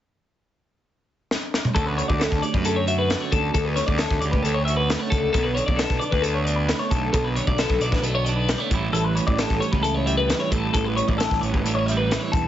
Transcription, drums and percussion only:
1.31 snare
1.54 snare
1.65 mid tom
1.76 kick, closed hi-hat
1.99 closed hi-hat
2.10 kick
2.21 snare, closed hi-hat
2.32 kick
2.43 closed hi-hat
2.54 kick
2.65 closed hi-hat
2.87 closed hi-hat
3.10 snare, closed hi-hat
3.32 kick, closed hi-hat
3.54 kick, closed hi-hat
3.77 snare, closed hi-hat
3.88 kick
3.98 snare, closed hi-hat
4.11 kick
4.22 closed hi-hat
4.33 kick
4.45 closed hi-hat
4.68 closed hi-hat
4.90 snare, closed hi-hat
5.12 kick, closed hi-hat
5.34 kick, closed hi-hat
5.57 closed hi-hat
5.68 kick
5.79 snare, closed hi-hat
5.90 kick
6.01 closed hi-hat
6.12 kick
6.24 closed hi-hat
6.47 closed hi-hat
6.69 snare, closed hi-hat
6.91 kick, closed hi-hat
7.14 kick, closed hi-hat
7.36 closed hi-hat
7.47 kick
7.58 snare, closed hi-hat
7.70 kick
7.81 closed hi-hat
7.92 kick, snare
8.03 closed hi-hat
8.26 closed hi-hat
8.49 snare, closed hi-hat
8.71 kick, closed hi-hat
8.95 closed hi-hat
9.17 closed hi-hat
9.28 kick
9.38 snare, closed hi-hat
9.50 kick
9.62 closed hi-hat
9.73 kick
9.84 closed hi-hat
10.07 closed hi-hat
10.30 snare, closed hi-hat
10.52 kick, closed hi-hat
10.74 kick, closed hi-hat
10.98 closed hi-hat
11.08 kick
11.20 snare, closed hi-hat
11.31 kick, snare
11.43 closed hi-hat
11.54 kick
11.66 closed hi-hat
11.88 closed hi-hat
12.11 snare, closed hi-hat
12.33 kick, closed hi-hat

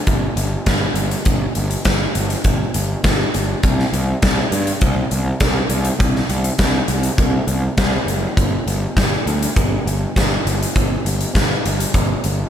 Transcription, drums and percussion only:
0.07 kick, closed hi-hat
0.37 closed hi-hat
0.66 kick, snare, closed hi-hat
0.96 closed hi-hat
1.11 closed hi-hat
1.25 kick, closed hi-hat
1.55 closed hi-hat
1.71 closed hi-hat
1.85 kick, snare, closed hi-hat
2.15 closed hi-hat
2.30 closed hi-hat
2.44 kick, closed hi-hat
2.74 closed hi-hat
3.04 kick, snare, closed hi-hat
3.34 closed hi-hat
3.63 kick, closed hi-hat
3.79 snare
3.93 closed hi-hat
4.22 kick, snare, closed hi-hat
4.52 closed hi-hat
4.67 closed hi-hat
4.81 kick, closed hi-hat
5.11 closed hi-hat
5.40 kick, snare, closed hi-hat
5.70 closed hi-hat
5.85 closed hi-hat
6.00 kick, closed hi-hat
6.16 snare
6.30 closed hi-hat
6.44 closed hi-hat
6.59 kick, snare, closed hi-hat
6.88 closed hi-hat
7.03 closed hi-hat
7.18 kick, closed hi-hat
7.48 closed hi-hat
7.78 kick, snare, closed hi-hat
8.08 closed hi-hat
8.37 kick, closed hi-hat
8.68 closed hi-hat
8.97 kick, snare, closed hi-hat
9.27 closed hi-hat
9.43 closed hi-hat
9.56 kick, closed hi-hat
9.87 closed hi-hat
10.16 kick, snare, closed hi-hat
10.47 closed hi-hat
10.63 closed hi-hat
10.76 kick, closed hi-hat
11.06 closed hi-hat
11.21 closed hi-hat
11.35 kick, snare, closed hi-hat
11.66 closed hi-hat
11.80 closed hi-hat
11.94 kick, closed hi-hat
12.24 closed hi-hat

